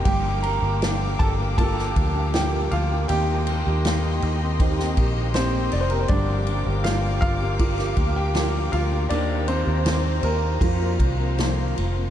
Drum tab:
RD |x-x-x-x-x-x-x-x-|x-x-x-x-x-x-x-xx|x-x-x-x-xxx-x-x-|x-x-x-x-x-x-x-x-|
SD |----o----o--o---|----o----o--o---|----o----o--o---|----o-------o---|
BD |o-----o-o-o-----|--------o-o-----|o-----o-o-o-----|--------o-o-----|